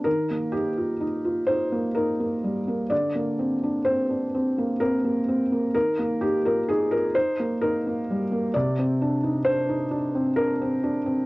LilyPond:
\new Staff \with { instrumentName = "Felt piano" } { \time 6/8 \key ees \major \tempo 4. = 43 << { bes'8 g'4 c''8 bes'4 | d''4 c''4 bes'4 | bes'8 g'16 bes'16 aes'16 bes'16 c''8 bes'4 | d''4 c''4 bes'4 | } \\ { ees16 bes16 ees'16 f'16 ees'16 f'16 ees'16 bes16 ees'16 bes16 g16 bes16 | d16 bes16 c'16 d'16 c'16 d'16 c'16 bes16 c'16 bes16 c'16 bes16 | ees16 bes16 ees'16 f'16 ees'16 f'16 ees'16 bes16 ees'16 bes16 g16 bes16 | c16 c'16 d'16 ees'16 d'16 ees'16 d'16 c'16 d'16 c'16 d'16 c'16 | } >> }